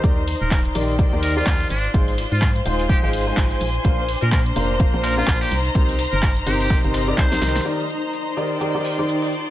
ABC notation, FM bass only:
X:1
M:4/4
L:1/16
Q:"Swing 16ths" 1/4=126
K:Eb
V:1 name="FM bass" clef=bass
E,,3 E,,,3 B,,,3 E,,3 E,, z A,,, z | A,,,3 A,,3 E,,,3 A,,,3 A,,, z B,,, z | B,,,3 B,,3 F,,,3 B,,,3 B,,, z C,, z | C,,3 G,,,3 G,,,3 G,,,3 C,, z C,, z |
z16 |]